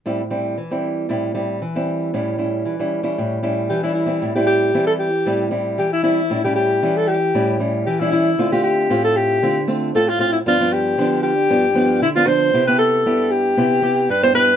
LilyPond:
<<
  \new Staff \with { instrumentName = "Alto saxophone" } { \time 4/4 \key a \minor \tempo 4 = 115 r1 | r2. g'16 e'16 e'8~ | e'16 g'16 g'8. a'16 g'4 r8 g'16 e'16 e'8~ | e'16 g'16 g'8. a'16 g'4 r8 g'16 e'16 e'8~ |
e'16 g'16 g'8. a'16 g'4 r8 a'16 f'16 f'16 e'16 | f'8 g'4 g'4. e'16 f'16 c''8~ | c''16 b'16 a'4 g'4. b'16 c''16 b'8 | }
  \new Staff \with { instrumentName = "Nylon-string guitar" } { \time 4/4 \key a \minor << { <g c' e'>16 r16 <g c' e'>8 r16 <g c' e'>8. <g c' e'>8 <g c' e'>8 r16 <g c' e'>8. | <g cis' e'>8 <g cis' e'>8. <g cis' e'>8 <g cis' e'>8. <g cis' e'>8. <g cis' e'>8 <g c' e'>16~ | <g c' e'>16 <g c' e'>8. <g c' e'>8. r16 <g c' e'>8 <g c' e'>8. r16 <g c' e'>16 r16 | <g cis' e'>16 <g cis' e'>8. <g cis' e'>8. r16 <g cis' e'>8 <g cis' e'>8 r16 <g cis' e'>16 <g cis' e'>16 r16 |
<a c' f'>16 <a c' f'>8. <a c' f'>4 <a c' f'>16 r16 <a c' f'>8 <a c' f'>16 r16 <a c' f'>16 r16 | <f b d'>16 <f b d'>8. <f b d'>8. r16 <f b d'>16 r16 <f b d'>8 r16 <f b d'>16 <f b d'>8 | <b e' g'>16 <b e' g'>8. <b e' g'>4 <b e' g'>8 <b e' g'>8 r16 <b e' g'>16 <b e' g'>16 r16 | } \\ { a,4 e4 a,4 e4 | a,4 e4 a,4 e4 | a,4 e4 a,4 e4 | a,4 e4 a,4 e4 |
d4 a,4 d4 a,4 | g,4 d4 g,4 d4 | c4 g,4 c4 g,4 | } >> }
>>